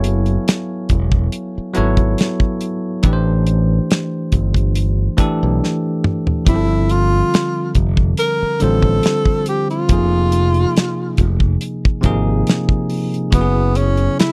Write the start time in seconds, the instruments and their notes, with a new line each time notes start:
Already playing: fingered electric bass F#1, tine electric piano F#3 B3 E4 A4 C#5 F5 G#5
0.04 closed hi-hat
0.26 closed hi-hat
0.48 snare, closed hi-hat
0.89 fingered electric bass E1, kick, closed hi-hat
1.12 kick
1.32 closed hi-hat
1.58 muted fingered electric bass stroke
1.74 tine electric piano F#3 B3 E4 A4 C#5, closed hi-hat
1.78 fingered electric bass G#1
1.97 kick, closed hi-hat
2.18 snare, closed hi-hat
2.40 kick
2.61 closed hi-hat
3.03 fingered electric bass A1, tine electric piano E3 A3 D4 G4 B4, kick, closed hi-hat
3.13 tine electric piano C5
3.47 closed hi-hat
3.91 snare, closed hi-hat
4.32 fingered electric bass G1, kick, closed hi-hat
4.54 kick, closed hi-hat
4.75 closed hi-hat
5.17 tine electric piano E3 A3 D4 G4 A4, muted fingered electric bass stroke, kick, closed hi-hat
5.43 fingered electric bass B1
5.64 snare
6.04 mid tom
6.27 floor tom
6.45 fingered electric bass G1, tine electric piano D3 F3 G3 C4 G4, tenor saxophone E4, kick, closed hi-hat
6.56 tine electric piano A4
6.89 tenor saxophone F4, closed hi-hat
7.34 snare, closed hi-hat
7.75 fingered electric bass F1, kick, closed hi-hat
7.97 kick
8.17 tenor saxophone A#4, closed hi-hat
8.43 muted fingered electric bass stroke
8.60 fingered electric bass A1, tine electric piano D3 G3 C4 F4 C5, tenor saxophone A4, closed hi-hat
8.82 kick
9.03 snare, closed hi-hat
9.25 kick
9.46 tenor saxophone G4, closed hi-hat
9.70 tenor saxophone F4, closed hi-hat
9.88 fingered electric bass F1, tine electric piano C3 F3 A#3 D#4, kick, closed hi-hat
9.93 tine electric piano G#4
10.32 closed hi-hat
10.54 closed hi-hat
10.77 snare, closed hi-hat
11.17 fingered electric bass F1, kick, closed hi-hat
11.40 kick
11.61 closed hi-hat
11.85 muted fingered electric bass stroke, kick
12.01 fingered electric bass G#1, tine electric piano C3 F3 A#3 D#4, kick, closed hi-hat
12.06 tine electric piano G#4
12.47 snare, closed hi-hat
12.69 kick
12.90 open hi-hat
13.14 closed hi-hat
13.31 fingered electric bass F#1, tine electric piano C#3 F#3 B3 E4 F#4, tenor saxophone B3, kick, closed hi-hat
13.41 tine electric piano G#4
13.75 tenor saxophone C#4, closed hi-hat
13.97 closed hi-hat
14.19 tenor saxophone E4, snare, closed hi-hat